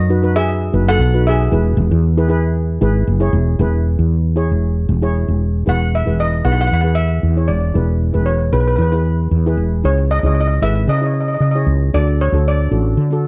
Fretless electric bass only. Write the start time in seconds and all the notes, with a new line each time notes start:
Already playing: F#2
0.74 F#1
0.99 B1
1.52 E1
1.77 E1
1.91 E2
2.82 G#1
3.07 F#1
3.33 E1
3.59 E1
3.99 E2
4.51 E1
4.89 E1
5.28 E1
5.67 E1
6.07 E1
6.45 B1
6.72 E2
7.23 E2
7.49 E1
7.75 E1
8.15 E1
8.53 B1
8.79 E2
9.31 E2
9.57 E1
9.84 C#2
10.23 C#2
10.62 G#1
10.88 C#3
11.40 C#3
11.66 C#2
11.94 D2
12.32 D2
12.71 A1
12.97 D3